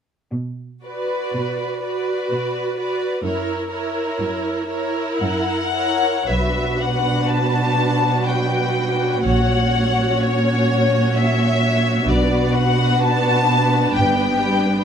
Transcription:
0.32 B2
0.84 F#4 B4 D5
1.33 B2
1.83 F#4 B4 D5
2.32 B2
2.78 F#4 B4 D5
3.24 F#2 E4 A#4 C#5
3.71 E4 A#4 C#5
4.20 F#2
4.68 E4 A#4 C#5
5.20 F#2 F#5
5.73 E4 A#4 C#5
6.27 B1 B2 F#3 D4 F#4 B4 E5
6.81 F#5
7.30 A5
8.27 G5
9.23 A#1 A#2 C#4 C#5 F#5
10.20 C#5
11.15 E5
12.07 B1 B2 B3 D4 F#4 B4 D5
12.55 F#5
13.02 A5
13.96 G1 G2 G4 G5

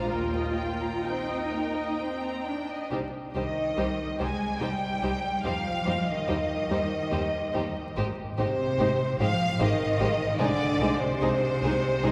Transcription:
0.09 D#2 A#3 F4 A#4 G5
0.35 D#5
0.58 G5
0.81 A#5
1.04 C4 D#4 G5
1.29 D#5
1.52 A#3 A#4
1.75 D#5
1.98 C4 G5
2.21 A#5
2.46 D4 G5
2.69 D#5
2.91 C2 G3 D#4 G4 C5
3.35 C2 D#3 G3 D#4 G4 C5 D#5
3.77 C2 G3 D#4 G4 C5
4.19 C2 G3 G#3 D#4 G4 C5 G#5
4.60 C2 G3 D#4 G4 C5 G5
5.02 C2 G3 D#4 G4 C5
5.44 D#2 F3 G3 D#4 G4 C5 F5
5.85 D#2 G3 D#4 G4 C5
6.08 D#3 D#5
6.28 D#2 G3 D#4 G4 C5
6.70 D#2 G3 D#4 G4 C5
7.11 D#2 G3 D#4 G4 C5
7.53 D#2 G3 D#4 G4 C5
7.97 G#1 G#3 D#4 G4 C5
8.38 G#1 C3 G#3 D#4 G4 C5
8.79 G#1 G#3 D#4 G4 C5
9.19 G#1 F3 G#3 D#4 G4 C5 F5
9.59 G#1 D#3 G#3 D#4 G4 C5 D#5
9.99 G#1 G#3 D#4 G4 C5
10.39 C2 D3 G#3 D#4 G#4 C5 D5
10.79 C2 G#3 D#4 G#4 C5
10.99 C3 C5
11.21 C2 G#3 D#4 G#4 C5
11.62 C2 G#3 D#4 G#4 C5
12.02 C2 G#3 D#4 G#4 C5

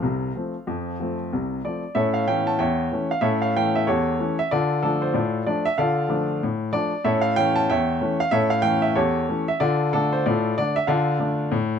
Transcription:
Already playing: A4 C5 F5
0.02 C2 C3
0.36 F3 A3 C4
0.67 F2 F3
1.00 F3 A3 C4
1.33 C2 C3
1.65 F3 A3 C4 D5
1.95 A2 C#4 A4 C#5 E5
2.14 F5
2.27 E3 A3 C#4 G5
2.47 A5
2.59 E2 C#5 E5 G5
2.92 E3 A3 C#4
3.11 F5
3.21 A2 C#4 A4 C#5 E5
3.42 F5
3.56 E3 A3 C#4 G5
3.75 E5
3.87 E2 G4 A4 C#5
4.19 E3 A3 C#4
4.39 E5
4.51 D3 F4 A4 D5
4.83 F3 A3 D4 A4
5.02 C5
5.14 A2 F4 A4 D5
5.47 F3 A3 D4 D5
5.65 E5
5.78 D3 F4 A4 D5 F5
6.09 F3 A3 D4
6.43 A2
6.72 F3 A3 D4 D5
7.04 A2 C#4 A4 C#5 E5
7.21 F5
7.36 E3 A3 C#4 G5
7.56 A5
7.70 E2 C#5 E5 G5
8.01 E3 A3 C#4
8.20 F5
8.31 A2 C#4 A4 C#5 E5
8.50 F5
8.62 E3 A3 C#4 G5
8.82 E5
8.95 E2 G4 A4 C#5
9.29 E3 A3 C#4
9.48 E5
9.60 D3 F4 A4 D5
9.93 D3 A3 D4 A4
10.13 C5
10.26 A2 F4 A4 D5
10.58 D3 A3 D4 D5
10.76 E5
10.87 D3 F4 A4 D5 F5
11.20 D3 A3 D4
11.51 A2

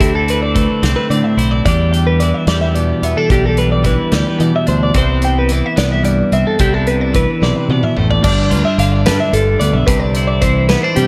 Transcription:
0.00 D2 D3 C4 E4 G4, kick, closed hi-hat
0.15 A4
0.28 B4, closed hi-hat
0.43 D5
0.55 A3 B4, kick, closed hi-hat
0.83 C2 C4 D5, snare, closed hi-hat
0.96 B4
1.10 A2 D3 D5, closed hi-hat
1.24 E5
1.37 B1 E4 C5, closed hi-hat
1.51 D5
1.65 E2 G3 D4 G4 D5, kick, closed hi-hat
1.93 G5, closed hi-hat
2.07 B4
2.20 E3 D5, closed hi-hat
2.34 E5
2.47 E2 G3 D5, snare, closed hi-hat
2.61 E5
2.75 B2 D5, closed hi-hat
3.02 E2 B3 E5, closed hi-hat
3.17 D4 A4
3.30 B1 E2 G3 D4 G4, kick, closed hi-hat
3.45 A4
3.57 B4, closed hi-hat
3.72 D5
3.84 E3 B4, kick, closed hi-hat
4.12 D2 G3 D5, snare, closed hi-hat
4.27 B4
4.39 B2 E3 D5, closed hi-hat
4.56 E5
4.67 D2 D4 C5, closed hi-hat
4.83 D5
4.94 C2 C3 B3 C4 E4 C5, kick, closed hi-hat
5.22 G5, closed hi-hat
5.39 B4
5.49 E3 D5, closed hi-hat
5.66 E5
5.76 C2 B3 D5, snare, closed hi-hat
5.92 E5
6.03 G2 D5, closed hi-hat
6.32 C2 C4 E5, closed hi-hat
6.47 A4
6.59 C2 C3 B3 D4 E4 G4, kick, closed hi-hat
6.74 A4
6.87 B4, closed hi-hat
7.01 D5
7.13 E3 B4, kick, closed hi-hat
7.42 B1 C3 D5, snare
7.56 B4
7.69 B2 C3 D5, high tom
7.83 E5, mid tom
7.97 A1 A2 C5, mid tom
8.11 D5, floor tom
8.23 G1 G2 D4 D5, kick, crash
8.51 D2 F4 B4, closed hi-hat
8.65 E5
8.78 G1 D3 F5, closed hi-hat
8.92 D5
9.06 G2 D4 B4, snare, closed hi-hat
9.20 E5
9.33 G1 G2 A4, closed hi-hat
9.60 D2 B3 D5, closed hi-hat
9.73 B1 E5
9.87 C2 C3 D4 B4, kick, closed hi-hat
10.00 D5
10.14 E4 C5, closed hi-hat
10.27 D5
10.42 E3 C5, kick, closed hi-hat
10.69 B3 B4, snare, closed hi-hat
10.83 D4 C5
10.96 G2 C3 G4, closed hi-hat

